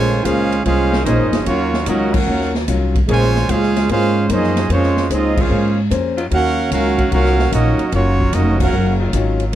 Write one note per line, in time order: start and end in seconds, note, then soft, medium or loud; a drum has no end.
0.00 0.24 A#1 medium
0.00 0.22 C#3 medium
0.00 0.22 F3 loud
0.00 0.23 F3 medium
0.00 0.22 G#3 loud
0.00 0.23 A3 medium
0.00 0.13 A#3 medium
0.00 0.23 A#3 medium
0.00 0.13 C#4 medium
0.00 0.23 C#4 medium
0.00 0.23 F4 loud
0.00 0.14 G#4 medium
0.00 0.23 G#4 medium
0.00 0.14 C5 medium
0.00 0.23 C5 loud
0.00 0.23 C#5 loud
0.00 0.23 G#5 loud
0.23 0.64 C#2 loud
0.23 0.61 G#3 medium
0.23 0.54 A#3 medium
0.23 0.64 C#4 medium
0.23 0.61 C#4 medium
0.23 0.54 C#4 medium
0.23 0.62 F4 medium
0.23 0.64 G#4 loud
0.23 0.54 G#4 medium
0.23 0.64 C5 medium
0.23 0.54 C5 medium
0.23 0.64 F5 loud
0.23 kick soft
0.23 hi-hat pedal medium
0.23 ride medium
0.52 ride medium
0.62 1.05 C2 medium
0.62 1.02 G#3 loud
0.62 0.94 A#3 medium
0.62 1.01 C#4 loud
0.62 1.03 C#4 medium
0.62 0.94 C#4 medium
0.62 1.02 F4 loud
0.62 1.03 G#4 loud
0.62 1.03 C5 medium
0.62 1.03 F5 loud
0.62 kick soft
0.62 ride medium
0.67 0.95 G#4 medium
0.67 0.95 C5 medium
0.90 1.43 C#3 loud
0.90 1.43 A#3 medium
0.90 1.43 G#4 loud
0.90 1.43 C5 loud
0.90 snare medium
1.02 1.19 A#1 medium
1.02 1.42 F3 medium
1.02 1.42 G#3 medium
1.02 1.34 A#3 medium
1.02 1.43 C#4 medium
1.02 1.34 C#4 medium
1.02 1.42 D#4 medium
1.02 1.43 G#4 medium
1.02 1.43 C5 medium
1.02 1.43 D#5 loud
1.02 kick soft
1.06 1.35 G#4 medium
1.06 1.35 C5 medium
1.06 hi-hat pedal medium
1.06 ride medium
1.19 1.31 G#1 medium
1.32 1.45 F1 medium
1.32 snare medium
1.32 ride medium
1.44 1.86 D#2 medium
1.44 1.75 D#3 medium
1.44 1.83 F#3 medium
1.44 1.76 F#3 medium
1.44 1.83 A#3 medium
1.44 1.85 A#3 medium
1.44 1.83 C#4 medium
1.44 1.85 F4 medium
1.44 1.85 F#4 medium
1.44 1.85 C#5 loud
1.44 kick soft
1.44 ride medium
1.49 1.76 C#4 medium
1.49 1.76 F4 medium
1.73 snare medium
1.84 2.26 C#2 medium
1.84 2.49 D#3 medium
1.84 2.16 D#3 medium
1.84 2.13 F#3 medium
1.84 2.49 F#3 medium
1.84 2.16 F#3 medium
1.84 2.09 A#3 medium
1.84 2.49 C#4 medium
1.84 2.13 C#4 medium
1.84 2.13 D#4 medium
1.84 2.49 F#4 loud
1.84 2.15 F#4 medium
1.84 2.13 A#4 medium
1.84 2.15 D#5 loud
1.84 kick soft
1.84 hi-hat pedal medium
1.84 ride medium
1.89 2.16 C#4 medium
1.89 2.17 F4 medium
2.10 2.53 A#3 medium
2.10 2.53 C#4 medium
2.10 2.53 F#4 medium
2.10 2.55 A#4 medium
2.10 kick loud
2.10 crash medium
2.14 2.55 C#4 medium
2.14 2.55 F5 medium
2.14 2.55 F#5 medium
2.27 2.66 D#2 medium
2.27 2.56 D#3 soft
2.27 2.56 F#3 medium
2.27 2.56 C#4 medium
2.27 2.57 F4 medium
2.41 snare soft
2.55 snare medium
2.68 3.07 C2 medium
2.68 2.96 D#3 medium
2.68 2.96 F#3 medium
2.68 2.97 C#4 medium
2.68 2.97 F4 medium
2.68 kick soft
2.68 hi-hat pedal medium
2.68 ride medium
2.95 kick medium
2.95 ride medium
3.07 3.48 A#1 loud
3.07 3.45 C#3 loud
3.07 3.71 C#3 medium
3.07 3.45 F3 loud
3.07 3.45 G#3 loud
3.07 3.37 A#3 medium
3.07 3.70 A#3 medium
3.07 3.71 C#4 medium
3.07 3.37 C#4 soft
3.07 3.47 F4 loud
3.07 3.70 G#4 loud
3.07 3.38 G#4 medium
3.07 3.38 C5 medium
3.07 3.47 G#5 loud
3.07 kick soft
3.07 ride medium
3.11 3.47 C5 loud
3.11 3.47 C#5 loud
3.22 snare soft
3.35 snare medium
3.49 3.88 C#2 loud
3.49 3.90 G#3 medium
3.49 3.77 A#3 medium
3.49 3.77 C#4 medium
3.49 3.90 C#4 medium
3.49 3.89 F4 medium
3.49 3.78 G#4 medium
3.49 3.90 G#4 loud
3.49 3.90 C5 medium
3.49 3.78 C5 medium
3.49 3.90 F5 loud
3.49 kick soft
3.49 hi-hat pedal medium
3.49 ride medium
3.63 snare soft
3.76 snare medium
3.76 ride medium
3.89 4.28 G#2 loud
3.89 4.28 G#3 loud
3.89 4.17 A#3 medium
3.89 4.18 C#4 medium
3.89 4.28 C#4 loud
3.89 4.28 F4 loud
3.89 4.18 G#4 medium
3.89 4.28 G#4 loud
3.89 4.19 C5 medium
3.89 4.28 C5 loud
3.89 4.28 F5 loud
3.89 kick soft
3.89 ride medium
4.29 4.69 F#2 loud
4.29 4.68 F3 medium
4.29 4.68 G#3 medium
4.29 4.58 A#3 medium
4.29 4.58 C#4 medium
4.29 4.69 C#4 medium
4.29 4.68 D#4 medium
4.29 4.59 G#4 medium
4.29 4.69 G#4 medium
4.29 4.59 C5 medium
4.29 4.69 C5 medium
4.29 4.69 D#5 loud
4.29 kick soft
4.29 hi-hat pedal medium
4.29 ride medium
4.43 snare soft
4.56 snare medium
4.56 ride medium
4.69 5.09 F2 medium
4.69 5.09 F3 medium
4.69 5.08 G#3 medium
4.69 4.98 A#3 soft
4.69 4.98 C#4 soft
4.69 5.09 C#4 medium
4.69 5.09 F4 medium
4.69 4.99 G#4 medium
4.69 4.99 C5 medium
4.69 5.08 C5 medium
4.69 5.09 C#5 loud
4.69 kick soft
4.69 ride medium
4.83 snare soft
4.97 snare medium
5.10 5.49 C#2 medium
5.10 5.38 A#3 medium
5.10 5.39 C4 medium
5.10 5.39 C#4 medium
5.10 5.38 D#4 medium
5.10 5.39 F4 medium
5.10 5.39 G#4 medium
5.10 5.39 C5 medium
5.10 5.39 D#5 medium
5.10 kick soft
5.10 hi-hat pedal medium
5.10 ride medium
5.37 5.78 G#3 medium
5.37 5.79 C#4 medium
5.37 5.78 F4 medium
5.37 5.79 C5 medium
5.37 5.79 F5 medium
5.37 kick loud
5.37 crash medium
5.41 5.80 G#4 medium
5.48 5.90 G#2 loud
5.48 5.78 A#3 soft
5.48 5.79 C#4 soft
5.48 5.79 G#4 soft
5.48 5.79 C5 medium
5.90 6.30 F2 medium
5.90 6.19 A#3 medium
5.90 6.19 C#4 medium
5.90 6.19 G#4 medium
5.90 6.19 C5 medium
5.90 kick soft
5.90 hi-hat pedal medium
5.90 ride medium
6.16 6.26 D#3 loud
6.16 6.26 F#3 medium
6.16 6.26 C#4 medium
6.16 6.26 F4 loud
6.16 ride medium
6.30 6.70 D#2 medium
6.30 6.59 D#3 medium
6.30 6.59 F#3 medium
6.30 6.70 A#3 medium
6.30 6.60 C#4 medium
6.30 6.69 C#4 loud
6.30 6.60 F4 medium
6.30 6.70 F#4 loud
6.30 6.70 F5 loud
6.30 kick soft
6.30 ride medium
6.34 6.70 C#4 loud
6.34 6.70 A#4 loud
6.34 6.70 F#5 loud
6.70 7.10 C#2 medium
6.70 6.99 D#3 medium
6.70 6.99 F#3 medium
6.70 7.10 A#3 medium
6.70 6.99 C#4 medium
6.70 7.10 C#4 medium
6.70 7.00 F4 medium
6.70 7.10 F#4 medium
6.70 7.10 A#4 medium
6.70 7.10 F5 loud
6.70 kick soft
6.70 hi-hat pedal medium
6.70 ride medium
6.97 7.49 D#3 loud
6.97 7.49 F#3 medium
6.97 7.49 C#4 loud
6.97 7.49 F#4 loud
6.97 kick medium
6.97 ride medium
7.10 7.51 C2 medium
7.10 7.39 D#3 soft
7.10 7.40 F#3 soft
7.10 7.50 A#3 loud
7.10 7.40 C#4 medium
7.10 7.50 C#4 medium
7.10 7.50 C#4 loud
7.10 7.41 F4 soft
7.10 7.50 F#4 loud
7.10 7.50 A#4 loud
7.10 7.50 F5 loud
7.10 kick soft
7.10 ride medium
7.25 snare soft
7.39 snare medium
7.51 7.77 A#1 medium
7.51 7.80 D#3 medium
7.51 7.80 F#3 medium
7.51 7.90 F#3 medium
7.51 7.90 A#3 medium
7.51 7.81 C#4 medium
7.51 7.90 C#4 medium
7.51 7.90 D#4 medium
7.51 7.80 F4 medium
7.51 7.90 F#4 medium
7.51 7.91 A#4 medium
7.51 7.91 D#5 medium
7.51 kick soft
7.51 hi-hat pedal medium
7.51 ride medium
7.79 muted upright bass stroke soft
7.79 ride medium
7.91 8.31 F#1 loud
7.91 8.20 D#3 soft
7.91 8.32 F#3 medium
7.91 8.21 F#3 medium
7.91 8.31 A#3 medium
7.91 8.32 C#4 medium
7.91 8.21 C#4 medium
7.91 8.22 F4 medium
7.91 kick soft
7.91 ride medium
7.95 8.34 A#3 medium
7.95 8.34 F4 medium
7.95 8.33 F#4 medium
7.95 8.34 C#5 loud
8.20 kick medium
8.32 8.72 F1 loud
8.32 8.61 D#3 medium
8.32 8.60 F#3 medium
8.32 8.61 F#3 medium
8.32 8.57 A#3 medium
8.32 8.60 C#4 medium
8.32 8.62 C#4 medium
8.32 8.60 D#4 medium
8.32 8.62 F4 medium
8.32 8.60 F#4 medium
8.32 8.60 A#4 medium
8.32 8.61 D#5 loud
8.32 kick soft
8.32 hi-hat pedal medium
8.32 ride medium
8.58 8.96 A#3 medium
8.58 8.97 C#4 medium
8.58 8.98 C#4 medium
8.58 8.97 F#4 medium
8.58 8.98 A#4 medium
8.58 8.98 F5 medium
8.58 8.98 F#5 medium
8.58 kick loud
8.58 crash loud
8.72 9.12 F#1 loud
8.72 9.01 D#3 soft
8.72 9.01 F#3 medium
8.72 9.01 C#4 medium
8.72 9.02 F4 medium
9.00 9.51 D#3 loud
9.00 9.51 F#3 medium
9.00 9.51 C#4 medium
9.00 9.51 F4 loud
9.13 9.52 G#1 loud
9.13 9.42 D#3 medium
9.13 9.42 F#3 medium
9.13 9.43 C#4 medium
9.13 9.43 F4 medium
9.13 kick soft
9.13 hi-hat pedal medium
9.13 ride medium
9.40 ride medium